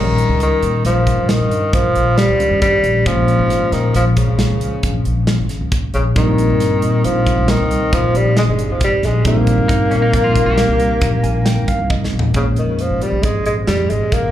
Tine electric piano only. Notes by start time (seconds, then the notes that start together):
Already playing: D#3 G3 C#4
2.40 D#3 G3 C#4
3.06 A#2 F3 G#3 C#4
6.16 A#2 G3 C4 D#4
9.25 A#2 G3 C4 D#4
11.23 G#5
11.45 G5
11.68 F5
11.91 D#5
12.35 A#2 F3 G#3 C#4